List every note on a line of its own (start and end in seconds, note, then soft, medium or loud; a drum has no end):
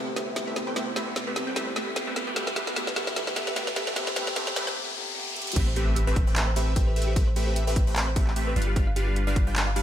0.00 0.54 C3 medium
0.00 2.13 C3 medium
0.00 3.92 G3 medium
0.00 0.56 A3 medium
0.00 0.57 B3 medium
0.00 3.92 B3 medium
0.00 2.13 E4 medium
0.00 0.58 G4 medium
0.00 2.13 A4 medium
0.00 riser medium
0.07 0.09 C5 medium
0.16 0.45 A3 medium
0.16 0.45 C4 medium
0.16 0.20 G4 medium
0.16 0.45 G4 medium
0.16 0.45 B4 medium
0.16 0.45 E5 medium
0.16 snare medium
0.16 closed hi-hat medium
0.27 0.29 G4 medium
0.36 0.40 G4 medium
0.36 snare medium
0.36 closed hi-hat medium
0.47 0.65 A3 medium
0.47 0.65 C4 medium
0.47 0.65 G4 medium
0.47 0.50 B4 medium
0.47 0.65 B4 medium
0.47 0.65 E5 medium
0.54 0.73 C3 medium
0.54 0.74 A3 medium
0.54 0.75 B3 medium
0.54 0.62 B4 medium
0.54 snare medium
0.54 closed hi-hat medium
0.58 0.76 G4 medium
0.67 0.74 A3 medium
0.67 0.74 C4 medium
0.67 0.74 G4 medium
0.67 0.74 B4 medium
0.67 0.69 C5 medium
0.67 0.74 G5 medium
0.74 1.33 C3 medium
0.74 1.34 A3 medium
0.74 0.88 A3 medium
0.74 1.34 B3 medium
0.74 0.88 C4 medium
0.74 0.79 G4 medium
0.74 0.88 G4 medium
0.74 0.88 B4 medium
0.74 0.88 E5 medium
0.74 snare medium
0.74 closed hi-hat medium
0.78 1.35 G4 medium
0.87 0.89 C5 loud
0.96 1.25 A3 medium
0.96 1.25 C4 medium
0.96 1.00 G4 loud
0.96 1.25 G4 medium
0.96 1.25 B4 medium
0.96 1.25 E5 medium
0.96 snare medium
0.96 closed hi-hat medium
1.07 1.09 G4 medium
1.16 1.20 G4 medium
1.16 snare medium
1.16 closed hi-hat medium
1.27 1.45 A3 medium
1.27 1.45 C4 medium
1.27 1.45 G4 medium
1.27 1.30 B4 loud
1.27 1.45 B4 medium
1.27 1.45 E5 medium
1.34 1.53 C3 medium
1.34 1.54 A3 medium
1.34 1.55 B3 medium
1.34 1.42 B4 medium
1.34 snare medium
1.34 closed hi-hat medium
1.38 1.56 G4 medium
1.47 1.54 A3 medium
1.47 1.54 C4 medium
1.47 1.54 G4 medium
1.47 1.54 B4 medium
1.47 1.49 C5 medium
1.47 1.54 G5 medium
1.54 2.13 C3 medium
1.54 2.14 A3 medium
1.54 1.68 A3 medium
1.54 2.14 B3 medium
1.54 1.68 C4 medium
1.54 1.59 G4 medium
1.54 1.68 G4 medium
1.54 1.68 B4 medium
1.54 1.68 E5 medium
1.54 snare medium
1.54 closed hi-hat medium
1.58 2.15 G4 medium
1.67 1.69 C5 medium
1.76 2.04 A3 medium
1.76 2.04 C4 medium
1.76 1.80 G4 loud
1.76 2.05 G4 medium
1.76 2.05 B4 medium
1.76 2.05 E5 loud
1.76 snare medium
1.76 closed hi-hat medium
1.87 1.89 G4 medium
1.96 2.00 G4 medium
1.96 snare medium
1.96 closed hi-hat medium
2.07 2.25 A3 medium
2.07 2.25 C4 medium
2.07 2.25 G4 medium
2.07 2.10 B4 loud
2.07 2.25 B4 medium
2.07 2.25 E5 medium
2.14 2.33 B2 medium
2.14 4.74 D3 medium
2.14 2.34 A3 medium
2.14 2.35 B3 medium
2.14 3.94 F4 medium
2.14 3.94 B4 medium
2.14 2.22 B4 medium
2.14 snare medium
2.14 closed hi-hat medium
2.18 2.36 G4 medium
2.27 2.34 A3 medium
2.27 2.34 B3 medium
2.27 2.34 G4 medium
2.27 2.34 B4 medium
2.27 2.29 B4 medium
2.27 2.34 G5 loud
2.34 2.73 B2 medium
2.34 2.74 A3 medium
2.34 2.48 A3 medium
2.34 2.48 B3 medium
2.34 2.75 B3 medium
2.34 2.39 G4 medium
2.34 2.48 G4 medium
2.34 2.48 B4 medium
2.34 2.48 E5 medium
2.34 snare medium
2.34 closed hi-hat medium
2.38 2.76 G4 loud
2.47 2.49 B4 medium
2.47 snare medium
2.56 2.75 A3 medium
2.56 2.75 B3 medium
2.56 2.75 G4 medium
2.56 2.60 G4 loud
2.56 2.75 B4 medium
2.56 2.75 E5 loud
2.56 snare medium
2.56 closed hi-hat medium
2.67 2.69 G4 medium
2.67 snare medium
2.74 3.13 B2 medium
2.74 3.14 A3 medium
2.74 2.88 A3 medium
2.74 2.88 B3 medium
2.74 3.15 B3 medium
2.74 2.88 G4 medium
2.74 2.79 G4 medium
2.74 2.88 B4 medium
2.74 2.88 E5 loud
2.74 snare medium
2.74 closed hi-hat medium
2.78 3.16 G4 loud
2.87 2.89 B4 loud
2.87 snare medium
2.96 3.15 A3 medium
2.96 3.15 B3 medium
2.96 3.15 G4 medium
2.96 3.00 G4 loud
2.96 3.15 B4 medium
2.96 3.15 E5 medium
2.96 snare loud
2.96 closed hi-hat medium
3.07 3.09 G4 medium
3.07 snare medium
3.14 3.53 B2 medium
3.14 3.54 A3 medium
3.14 3.28 A3 medium
3.14 3.28 B3 medium
3.14 3.55 B3 medium
3.14 3.19 G4 medium
3.14 3.28 G4 medium
3.14 3.28 B4 medium
3.14 3.28 E5 medium
3.14 snare loud
3.14 closed hi-hat medium
3.18 3.56 G4 loud
3.27 3.29 B4 loud
3.27 snare medium
3.36 3.55 A3 medium
3.36 3.55 B3 medium
3.36 3.40 G4 loud
3.36 3.55 G4 medium
3.36 3.55 B4 medium
3.36 3.55 E5 medium
3.36 snare loud
3.36 closed hi-hat medium
3.47 3.49 G4 medium
3.47 snare medium
3.54 3.94 B2 loud
3.54 3.94 A3 medium
3.54 3.68 A3 medium
3.54 3.68 B3 medium
3.54 3.95 B3 medium
3.54 3.59 G4 medium
3.54 3.68 G4 medium
3.54 3.68 B4 medium
3.54 3.68 E5 medium
3.54 snare loud
3.54 closed hi-hat medium
3.58 3.96 G4 loud
3.67 3.69 B4 loud
3.67 snare medium
3.76 3.95 A3 medium
3.76 3.95 B3 medium
3.76 3.80 G4 loud
3.76 3.95 G4 medium
3.76 3.95 B4 medium
3.76 3.95 E5 loud
3.76 snare medium
3.76 closed hi-hat medium
3.87 3.89 G4 medium
3.87 snare medium
3.94 4.13 C3 medium
3.94 4.14 A3 medium
3.94 4.08 A3 medium
3.94 4.15 B3 medium
3.94 4.08 C4 medium
3.94 3.99 G4 medium
3.94 4.08 G4 medium
3.94 4.16 G4 loud
3.94 4.08 B4 medium
3.94 4.08 E5 medium
3.94 snare loud
3.94 closed hi-hat medium
4.07 4.09 C5 loud
4.07 snare loud
4.14 4.33 C3 loud
4.14 4.34 A3 medium
4.14 4.28 A3 medium
4.14 4.35 B3 medium
4.14 4.28 C4 medium
4.14 4.19 G4 medium
4.14 4.28 G4 medium
4.14 4.28 B4 medium
4.14 4.28 E5 medium
4.14 snare loud
4.14 closed hi-hat medium
4.18 4.36 G4 loud
4.27 4.29 C5 loud
4.27 snare medium
4.34 4.53 C3 medium
4.34 4.54 A3 medium
4.34 4.48 A3 medium
4.34 4.55 B3 medium
4.34 4.48 C4 medium
4.34 4.39 G4 medium
4.34 4.48 G4 medium
4.34 4.48 B4 medium
4.34 4.48 E5 loud
4.34 snare loud
4.34 closed hi-hat medium
4.38 4.56 G4 loud
4.47 4.49 C5 loud
4.47 snare loud
4.54 4.73 C3 loud
4.54 4.74 A3 medium
4.54 4.68 A3 medium
4.54 4.75 B3 medium
4.54 4.68 C4 medium
4.54 4.59 G4 medium
4.54 4.68 G4 medium
4.54 4.76 G4 loud
4.54 4.68 B4 medium
4.54 4.68 E5 medium
4.54 snare loud
4.54 closed hi-hat medium
4.67 4.69 C5 loud
4.67 snare loud
4.74 4.93 C3 loud
4.74 4.94 A3 medium
4.74 4.95 B3 medium
4.78 4.96 G4 loud
4.94 5.13 C3 medium
4.94 5.14 A3 medium
4.94 5.15 B3 medium
4.98 5.16 G4 loud
5.14 5.33 C3 loud
5.14 5.34 A3 medium
5.14 5.35 B3 medium
5.14 5.36 G4 loud
5.34 5.54 C3 loud
5.34 5.55 A3 medium
5.34 5.55 B3 medium
5.34 closed hi-hat medium
5.38 5.56 G4 loud
5.38 closed hi-hat medium
5.47 closed hi-hat medium
5.52 closed hi-hat medium
5.56 8.54 A1 medium
5.56 5.68 A3 medium
5.56 5.68 C4 medium
5.56 5.59 G4 medium
5.56 5.68 G4 medium
5.56 5.68 B4 medium
5.56 5.68 E5 medium
5.56 kick loud
5.56 closed hi-hat medium
5.56 crash loud
5.56 sub drop medium
5.67 5.69 C5 loud
5.76 6.05 A3 medium
5.76 6.05 C4 medium
5.76 5.80 G4 loud
5.76 6.05 G4 medium
5.76 6.05 B4 medium
5.76 6.05 E5 medium
5.76 closed hi-hat medium
5.87 5.89 G4 medium
5.96 6.00 G4 medium
5.96 closed hi-hat medium
6.07 6.25 A3 medium
6.07 6.25 C4 medium
6.07 6.25 G4 medium
6.07 6.11 B4 loud
6.07 6.25 B4 medium
6.07 6.25 E5 medium
6.16 6.22 B4 medium
6.16 kick loud
6.16 closed hi-hat medium
6.27 6.34 A3 medium
6.27 6.34 C4 medium
6.27 6.34 G4 medium
6.27 6.34 B4 medium
6.27 6.29 C5 medium
6.27 6.34 G5 loud
6.36 6.48 A3 medium
6.36 6.48 C4 medium
6.36 6.48 G4 medium
6.36 6.39 B4 medium
6.36 6.48 B4 medium
6.36 6.48 E5 medium
6.36 clap loud
6.36 closed hi-hat medium
6.47 6.49 C5 loud
6.56 6.73 A3 medium
6.56 6.73 C4 medium
6.56 6.60 G4 loud
6.56 6.73 G4 medium
6.56 6.73 B4 medium
6.56 6.73 E5 loud
6.56 closed hi-hat medium
6.67 6.69 G4 medium
6.76 6.94 A3 medium
6.76 6.94 C4 medium
6.76 6.94 G4 medium
6.76 6.94 B4 medium
6.76 6.94 E5 loud
6.76 6.80 G5 loud
6.76 kick loud
6.76 closed hi-hat medium
6.87 6.91 B4 loud
6.96 7.14 A3 medium
6.96 7.14 C4 medium
6.96 7.14 G4 medium
6.96 7.02 B4 medium
6.96 7.14 B4 medium
6.96 7.14 E5 medium
6.96 closed hi-hat soft
7.02 closed hi-hat medium
7.07 7.11 G4 loud
7.16 7.28 A3 medium
7.16 7.28 C4 medium
7.16 7.28 B4 medium
7.16 7.28 E5 medium
7.16 kick loud
7.16 closed hi-hat medium
7.27 7.29 C5 loud
7.36 7.65 A3 medium
7.36 7.65 C4 medium
7.36 7.40 G4 loud
7.36 7.65 G4 medium
7.36 7.65 B4 medium
7.36 7.65 E5 loud
7.36 closed hi-hat medium
7.47 7.49 G4 medium
7.56 7.60 G4 medium
7.56 closed hi-hat medium
7.67 7.85 A3 medium
7.67 7.85 C4 medium
7.67 7.85 G4 medium
7.67 7.71 B4 loud
7.67 7.85 B4 medium
7.67 7.85 E5 medium
7.76 7.82 B4 medium
7.76 kick loud
7.76 closed hi-hat medium
7.87 7.94 A3 medium
7.87 7.94 C4 medium
7.87 7.94 G4 medium
7.87 7.94 B4 medium
7.87 7.89 C5 medium
7.87 7.94 G5 medium
7.96 8.08 A3 medium
7.96 8.08 C4 medium
7.96 8.08 G4 medium
7.96 7.99 B4 medium
7.96 8.08 B4 medium
7.96 8.08 E5 medium
7.96 clap loud
7.96 closed hi-hat medium
8.07 8.09 C5 loud
8.16 8.33 A3 medium
8.16 8.33 C4 medium
8.16 8.20 G4 loud
8.16 8.33 G4 medium
8.16 8.33 B4 medium
8.16 8.33 E5 loud
8.16 kick loud
8.16 closed hi-hat medium
8.27 8.29 G4 medium
8.27 clap soft
8.36 8.54 A3 medium
8.36 8.54 C4 medium
8.36 8.54 G4 medium
8.36 8.54 B4 medium
8.36 8.54 E5 loud
8.36 8.40 G5 loud
8.36 closed hi-hat medium
8.47 8.51 B4 loud
8.56 9.83 G1 medium
8.56 8.74 G3 medium
8.56 8.74 D4 medium
8.56 8.74 F4 medium
8.56 8.74 B4 medium
8.56 8.62 D5 medium
8.56 8.74 F5 medium
8.56 closed hi-hat soft
8.62 closed hi-hat medium
8.67 8.70 G4 loud
8.76 8.88 G3 medium
8.76 8.88 D4 medium
8.76 8.88 F4 medium
8.76 8.79 G4 medium
8.76 8.88 B4 medium
8.76 8.88 F5 medium
8.76 kick loud
8.76 closed hi-hat medium
8.87 8.89 F5 loud
8.96 9.24 G3 medium
8.96 9.25 D4 medium
8.96 9.25 F4 medium
8.96 9.00 G4 loud
8.96 9.25 B4 medium
8.96 9.25 F5 medium
8.96 closed hi-hat medium
9.07 9.09 G4 medium
9.16 9.20 G4 medium
9.16 closed hi-hat medium
9.27 9.45 G3 medium
9.27 9.45 D4 medium
9.27 9.45 F4 medium
9.27 9.45 B4 medium
9.27 9.30 D5 loud
9.27 9.44 F5 medium
9.36 kick loud
9.36 closed hi-hat medium
9.47 9.54 G3 medium
9.47 9.54 D4 medium
9.47 9.54 F4 medium
9.47 9.54 B4 medium
9.47 9.49 F5 medium
9.47 9.54 G5 loud
9.56 9.68 G3 medium
9.56 9.68 D4 medium
9.56 9.68 F4 medium
9.56 9.68 B4 medium
9.56 9.59 D5 medium
9.56 9.68 F5 medium
9.56 clap loud
9.56 closed hi-hat medium
9.67 9.69 F5 medium
9.76 9.83 G3 loud
9.76 9.83 D4 medium
9.76 9.83 F4 medium
9.76 9.80 G4 loud
9.76 9.83 B4 medium
9.76 9.83 F5 loud
9.76 closed hi-hat medium